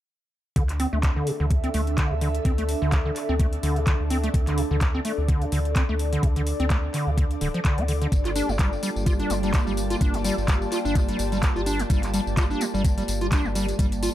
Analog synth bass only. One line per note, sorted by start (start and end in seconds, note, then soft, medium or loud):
0.56 0.86 D2 medium
0.93 1.22 D2 medium
1.40 1.69 D2 medium
1.74 2.04 D2 medium
2.11 2.40 D2 medium
2.45 2.75 D2 medium
2.82 3.11 D2 medium
3.29 3.58 D2 medium
3.63 3.93 D2 medium
4.00 4.29 D2 medium
4.34 4.64 D2 medium
4.71 5.00 D2 medium
5.18 5.47 D2 medium
5.52 5.82 D2 medium
5.89 6.18 D2 medium
6.23 6.53 D2 medium
6.60 6.89 D2 medium
7.07 7.36 D2 medium
7.41 7.50 D1 medium
7.78 8.07 D2 medium
8.12 8.42 G1 loud
8.49 8.78 G1 loud
8.96 9.25 G1 medium
9.30 9.60 G1 medium
9.67 9.96 G1 medium
10.01 10.31 G1 medium
10.38 10.67 G1 medium
10.85 11.14 G1 medium
11.19 11.49 G1 medium
11.56 11.85 G1 medium
11.90 12.20 G1 loud
12.27 12.56 G1 medium
12.74 13.03 G1 medium
13.08 13.38 G1 medium
13.45 13.74 G1 medium
13.79 14.09 G1 loud